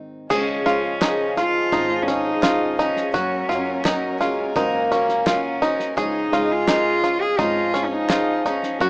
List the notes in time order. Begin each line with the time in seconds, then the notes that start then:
Already playing: G#2 D#3 C4 D#4 G#4
0.29 C#2 C#3 F3 G#3 C#4 D#4 G#4 C#5 D#5 F5 G#5, kick, snare, crash
0.66 C#2 F3 C#4 D#4 F4 G#4 C#5, snare
0.83 G#3 C#4 D#4 G#4
1.01 C#3 F3 G#3 C#4 D#4 G#4 A#4, kick, snare, clap
1.36 F3 G#3 C#4 D#4 F4 G#4 C5, snare
1.72 G#1 F3 G#3 C#4 D#4 G#4 D#5, kick, snare
1.89 G#3 C#4 D#4 G#4
2.02 C#4
2.08 F3 C#4 D#4 G#4 C#5, snare
2.23 G#3 C#4 D#4 G#4
2.41 C#3 F3 G#3 C#4 D#4 F4 G#4 C#5, kick, snare, clap
2.76 F3 G#3 C#4 D#4 G#4 D#5, snare
2.81 C#4
2.94 G#3 C#4 D#4 G#4, snare
3.12 F#1 F#2 F#3 A#3 C#4 F#4 A#4 C#5 A#5, kick, snare
3.49 F#2 F#3 A#3 C#4 F4 A#4 D#5, snare
3.65 C#4 F#4 A#4
3.83 F#3 A#3 C#4 D#4 F#4 A#4 C#5, kick, snare, clap
4.18 F#3 G#3 A#3 C#4 F4 F#4 A#4 C#5, snare
4.54 C#2 F#3 A#3 C#4 D#4 F#4 A#4 C5, kick, snare
4.72 C#4 F#4 A#4
4.91 F#3 A#3 C#4 A#4 C#5, snare
5.08 C#4 F#4 A#4, snare
5.26 F#3 A#3 C#4 F4 F#4 A#4 D#5, kick, snare, clap
5.61 F#3 A#3 C#4 D#4 F#4 A#4 C5, snare
5.78 C#4 F#4 A#4, snare
5.96 C#2 C#3 F3 G#3 C#4 D#4 F4 G#4 C#5 D#5 F5, kick, snare
6.31 C#2 F3 C#4 D#4 F4 G#4 C#5, snare
6.49 D#4 F4 G#4
6.67 C#3 F3 G#3 C#4 D#4 F4 G#4 A#4, kick, snare, clap
7.01 F3 G#3 C#4 D#4 F4 G#4 C#5, snare
7.21 G#4
7.36 G#1 F3 G#3 C#4 D#4 F4 G#4 C#5, kick, snare
7.55 D#4 F4 G#4
7.74 F3 C#4 D#4 G#4 C#5, snare
7.85 C#4
7.91 D#4 F4 G#4
8.08 C#3 F3 G#3 C#4 D#4 F4 G#4 C#5, kick, snare, clap
8.44 F3 G#3 C#4 D#4 F4 G#4 C#5, snare
8.48 G#4
8.62 D#4 F4 G#4, snare
8.79 F#1 F#2 F#3 A#3 C#4 F#4 A#4 C#5 A#5, kick, snare